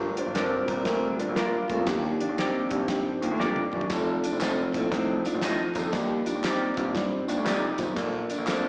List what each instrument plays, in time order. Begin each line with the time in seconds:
Already playing: baritone saxophone G2, upright piano G3 F4 A#4
0.17 upright piano G3 F4 C5, clean electric guitar D4, closed hi-hat
0.26 grand piano G1
0.34 upright piano G3 F4 A#4, clean electric guitar C4 D4 F4 A#4 D5, snare, closed hi-hat
0.66 grand piano C2, baritone saxophone A#2, upright piano G3 F4 A#4, kick, closed hi-hat
0.83 grand piano D2, baritone saxophone A#2, upright piano G3 F4 A#4, clean electric guitar C4, kick, snare, closed hi-hat
1.17 upright piano G3 F4 A#4, clean electric guitar D4, closed hi-hat
1.29 grand piano A#1
1.34 upright piano G3 F4 A#4, clean electric guitar D4 F4 A#4 D5, snare, closed hi-hat
1.68 grand piano D2, baritone saxophone F2, upright piano G3 F4 A#4, kick, closed hi-hat
1.79 grand piano E2
1.85 grand piano D#2, baritone saxophone D#2, upright piano D#3 D4 G4, kick, snare, closed hi-hat
2.18 upright piano D#3 D4 G4, clean electric guitar D4, closed hi-hat
2.29 grand piano D#2
2.37 upright piano D#3 D4 G4, clean electric guitar A#3 C4 D#4 G4 D5, snare, closed hi-hat
2.69 grand piano A#1, baritone saxophone G2, upright piano D#3 D4 G4, kick, closed hi-hat
2.87 baritone saxophone G2, upright piano D#3 D4 G4, clean electric guitar C4, kick, snare, closed hi-hat
3.21 grand piano D#2, upright piano D#3 D4 F4, clean electric guitar A#3, closed hi-hat
3.31 grand piano D2
3.39 baritone saxophone F2, grand piano G2, clean electric guitar A#3 D4 D#4 G4 D5, upright piano A#4 G5, snare
3.56 high tom
3.73 baritone saxophone D#2, grand piano F#2, upright piano F4 D5, mid tom
3.81 floor tom
3.90 grand piano F1, baritone saxophone F2, upright piano F3 D#4 A4, kick, snare, closed hi-hat, tambourine
4.22 upright piano F3 D#4 A4, clean electric guitar D4, closed hi-hat, tambourine
4.32 grand piano F1
4.40 upright piano F3 D#4 A4, clean electric guitar C4 F4 A4 D#5, snare, clap, closed hi-hat, tambourine
4.74 grand piano A#1, baritone saxophone A2, upright piano F3 D#4 A4, kick, closed hi-hat, tambourine
4.91 grand piano C2, baritone saxophone A2, upright piano F3 D#4 A4, clean electric guitar C4, kick, snare, closed hi-hat
5.25 upright piano F3 D#4 F4, clean electric guitar D4, closed hi-hat, tambourine
5.34 grand piano A1
5.41 upright piano F3 D#4 F4, clean electric guitar C4 D#4 F4 A4 D#5, snare, clap, closed hi-hat, tambourine
5.75 grand piano C2, baritone saxophone F2, upright piano F3 D#4 A4, kick, closed hi-hat, tambourine
5.84 grand piano E2
5.92 baritone saxophone D#2, grand piano D#2, upright piano G3 D#4 D5, kick, snare, closed hi-hat, tambourine
6.26 upright piano G3 D#4 D5, clean electric guitar D4, closed hi-hat, tambourine
6.35 grand piano D#2
6.43 upright piano G3 D#4 D5, clean electric guitar A#3 C4 D#4 G4 D5, snare, clap, closed hi-hat, tambourine
6.76 grand piano A#1, baritone saxophone G2, upright piano G3 D#4 D5, kick, closed hi-hat
6.93 baritone saxophone G2, upright piano G3 D#4 D5, clean electric guitar C4, kick, snare, closed hi-hat
7.27 grand piano D#2, upright piano G3 D#4 D5, clean electric guitar D4, closed hi-hat, tambourine
7.37 grand piano D2
7.44 grand piano C2, baritone saxophone F2, upright piano G3 D#4 D5, clean electric guitar A#3 D#4 G4 D5, snare, clap, closed hi-hat, tambourine
7.78 grand piano B1, baritone saxophone D#2, upright piano G3 D#4 C5, kick, snare, closed hi-hat, tambourine
7.95 grand piano A#1, baritone saxophone A#2, upright piano A#3 A4 D5, kick, snare, closed hi-hat, tambourine
8.28 upright piano A#3 A4 D5, clean electric guitar D4, closed hi-hat, tambourine
8.38 grand piano A#1
8.46 upright piano A#3 A4 D5, clean electric guitar C4 D4 F4 A4 D5, snare, clap, closed hi-hat, tambourine